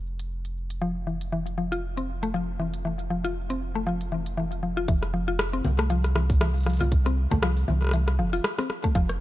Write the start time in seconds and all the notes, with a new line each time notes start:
Already playing: F1
0.19 closed hi-hat
0.45 closed hi-hat
0.70 closed hi-hat
0.82 F3
1.07 E3
1.21 closed hi-hat
1.32 E3
1.47 closed hi-hat
1.58 F3
1.72 F4, closed hi-hat
1.97 C4, closed hi-hat
2.23 A3, closed hi-hat
2.34 F3
2.60 E3
2.74 closed hi-hat
2.85 E3
2.99 closed hi-hat
3.10 F3
3.25 F4, closed hi-hat
3.50 C4, closed hi-hat
3.75 A3
3.87 F3
4.01 closed hi-hat
4.12 E3
4.26 closed hi-hat
4.37 E3
4.52 closed hi-hat
4.63 F3
4.77 F4
4.88 F1 E3, kick, closed hi-hat
5.03 cross-stick, closed hi-hat
5.14 F3
5.28 F4
5.39 cross-stick, closed hi-hat
5.53 C4, closed hi-hat
5.65 C2, low conga
5.79 A3, cross-stick, closed hi-hat
5.90 F3, closed hi-hat
6.04 cross-stick, closed hi-hat
6.15 E3, cross-stick
6.30 kick, open hi-hat
6.41 E3, cross-stick, closed hi-hat
6.55 open hi-hat
6.58 open hi-hat
6.61 open hi-hat
6.63 F3, cross-stick, open hi-hat
6.66 open hi-hat
6.70 open hi-hat
6.73 open hi-hat
6.77 open hi-hat
6.80 F4, open hi-hat, low conga
6.92 kick, closed hi-hat
7.06 C4, cross-stick, closed hi-hat
7.31 C2 A3, kick, low conga
7.43 F3, cross-stick, closed hi-hat
7.57 open hi-hat
7.68 C2 E3, low conga
7.82 cross-stick, closed hi-hat
7.84 cross-stick
7.87 cross-stick
7.89 cross-stick
7.91 E3, cross-stick, closed hi-hat
8.08 cross-stick, closed hi-hat
8.19 F1 F3
8.33 F4, open hi-hat
8.44 cross-stick, closed hi-hat
8.58 C4, cross-stick, open hi-hat
8.70 cross-stick
8.84 A3, kick, closed hi-hat
8.95 F1 F3, kick, closed hi-hat
9.09 cross-stick, closed hi-hat